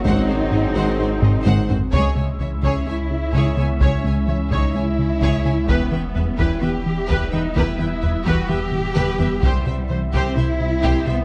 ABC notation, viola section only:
X:1
M:4/4
L:1/8
Q:1/4=128
K:G#m
V:1 name="Viola section"
^B,6- B, z | [K:E] c c c c c z c c | c c c c c z c c | B B B B B z B B |
B B B B B z B B | =c c c c c z c c |]